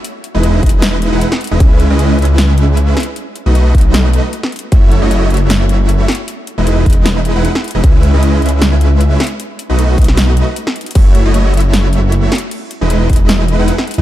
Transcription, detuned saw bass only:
X:1
M:4/4
L:1/16
Q:"Swing 16ths" 1/4=154
K:E
V:1 name="Detuned saw bass" clef=bass
z3 E,,,3 E,,,4- E,,, E,,, z3 E,,, | C,,3 C,,3 C,,8 z2 | z3 B,,,3 B,,,4- B,,, z4 z | F,,,3 F,,,3 F,,,8 z2 |
z3 E,,,3 E,,,4- E,,, E,,, z3 E,,, | C,,3 C,,3 C,,8 z2 | z3 B,,,3 B,,,4- B,,, z4 z | F,,,3 F,,,3 F,,,8 z2 |
z3 E,,,3 E,,,4- E,,, E,,, z3 E,, |]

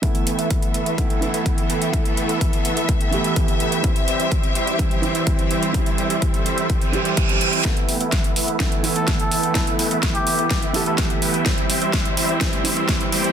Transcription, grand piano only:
X:1
M:4/4
L:1/8
Q:1/4=126
K:Ephr
V:1 name="Grand piano"
[E,A,B,E]4 [E,A,B,E] [E,A,B,E]3 | [E,A,B,E]4- [E,A,B,E] [E,A,B,G]3 | [E,G,CE]4 [E,G,CE] [E,G,CE]3 | [E,G,CE]4- [E,G,CE] [E,G,CG]3 |
[E,A,B,E]4 [E,A,B,E] [E,A,B,E]3 | [E,A,B,E]4- [E,A,B,E] [E,A,B,G]3 | [E,G,CE]4 [E,G,CE] [E,G,CE]3 |]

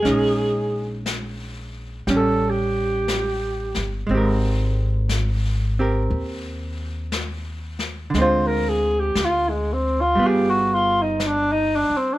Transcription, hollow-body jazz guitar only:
X:1
M:4/4
L:1/8
Q:"Swing" 1/4=59
K:Ab
V:1 name="Hollow-body jazz guitar"
[A,DE]4 [G,^C]4 | [A,CGB]3 [CGB]4- [CGB] | [=D,A,CF]4 [G,=B,FA]4 |]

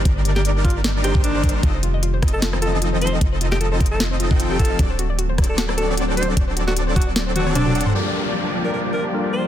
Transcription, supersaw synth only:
X:1
M:4/4
L:1/16
Q:"Swing 16ths" 1/4=152
K:Gm
V:1 name="Supersaw synth"
[G,DEBd]6 [G,DEBd]4 [G,DEBc]3 [G,DEBc]3 | [F,CEAe] z4 z [F,CEAe]4- [F,CEAe] [F,CEAe]4- [F,CEAe]- | [F,CEAe]6 [F,CEAe]4- [F,CEAe] [F,CEAg]3 [F,CEAf]2 | [^F,CDAd] z4 z [F,CDAd]4- [F,CDAd] [F,CDAd]4- [F,CDAd]- |
[^F,CDAd]6 [F,CDAd]4- [F,CDAd] [F,CDAd]3 [F,CDA^f]2 | [F,B,DGd]16 |]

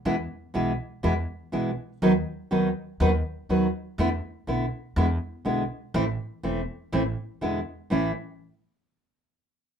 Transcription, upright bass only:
X:1
M:4/4
L:1/8
Q:1/4=122
K:Am
V:1 name="Upright bass" clef=bass
E,, z B,,, z E,, z B,,, z | ^D,, z D,, z D,, z D,, z | E,, z B,,, z E,, z B,,, z | A,,, z E,,, z A,,, z E,, z |
A,,, z6 z |]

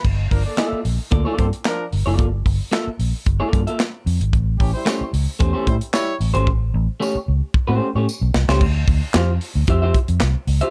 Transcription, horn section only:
X:1
M:4/4
L:1/16
Q:1/4=112
K:Gmix
V:1 name="Horn section"
z2 [F,D_B] [_B,Ad]3 z3 [F,DA] [CAc] z [F,DB]2 z2 | z16 | z2 [E,^CG] [G,E^B]3 z3 [E,CA] [G,EB] z [G,E^c]2 z2 | z16 |
z16 |]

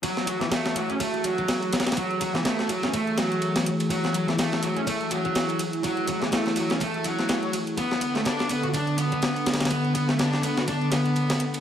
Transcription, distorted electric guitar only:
X:1
M:4/4
L:1/16
Q:"Swing 16ths" 1/4=124
K:F#m
V:1 name="Distorted electric guitar"
F,2 F, E, A,2 F, C A,2 F,4 z2 | F,2 F, E, A,2 F, C A,2 F,4 z2 | F,2 F, E, A,2 F, C A,2 F,4 z2 | F,2 F, E, A,2 F, C A,2 F,4 z2 |
B,2 B, A, D2 B, F D2 B,4 z2 | B,2 B, A, D2 B, F D2 B,4 z2 |]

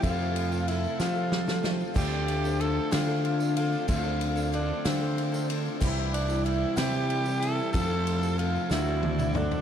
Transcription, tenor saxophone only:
X:1
M:6/8
L:1/8
Q:3/8=62
K:Dm
V:1 name="Tenor saxophone"
F2 E F2 z | G2 A F2 F | F2 D C2 z | z D E G2 A |
A2 F E2 D |]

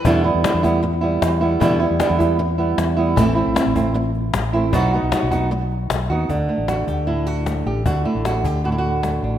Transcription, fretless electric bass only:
X:1
M:4/4
L:1/16
Q:1/4=154
K:Em
V:1 name="Fretless electric bass" clef=bass
E,,3 E,, z E,,6- E,, E,,4 | E,,3 E,, z E,,6- E,, E,,4 | A,,,3 A,,, z A,,,6- A,,, A,,,4 | B,,,3 B,,, z B,,,6- B,,, B,,,2 ^D,,2 |
D,,2 z A,,,3 D,,8 A,,,2 | D,,2 z A,,,3 D,,8 A,,,2 |]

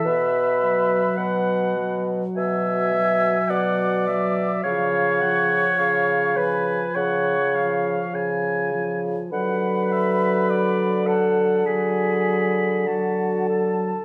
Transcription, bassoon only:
X:1
M:4/4
L:1/8
Q:1/4=51
K:Dlyd
V:1 name="Bassoon" clef=bass
B,,2 B,,2 B,,2 B,,2 | C,2 C,2 C,2 C,2 | D,8 |]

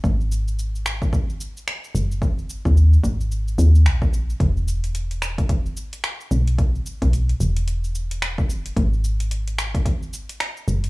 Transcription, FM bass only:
X:1
M:4/4
L:1/16
Q:"Swing 16ths" 1/4=110
K:G#m
V:1 name="FM bass" clef=bass
G,,,8- G,,, z4 z F,,,2- | F,,, z2 D,,2 z G,,,4 D,,2 A,,,3 z | E,,,8- E,,, z4 z B,,,2- | B,,, z2 B,,,2 z E,,,8- E,,, z |
G,,,8- G,,, z4 z F,,,2 |]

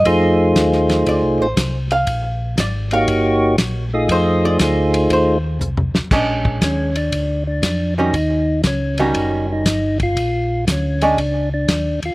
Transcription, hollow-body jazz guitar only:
X:1
M:4/4
L:1/8
Q:"Swing" 1/4=119
K:Bbmix
V:1 name="Hollow-body jazz guitar"
z4 d c2 f- | f2 d f z4 | c d3 c2 z2 | [A,^CD]3 z4 [E,G,C_G] |
z3 [E,G,_D^F]3 z2 | z3 [A,^CD] z4 |]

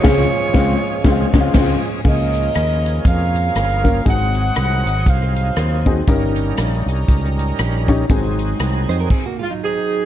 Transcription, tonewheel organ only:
X:1
M:4/4
L:1/8
Q:"Swing" 1/4=119
K:Db
V:1 name="Tonewheel organ"
[F,A,DA]8 | [F,B,DA]8 | [G,B,CEA]8 | [=G,DEB]8 |
[G,CEA]4 z4 |]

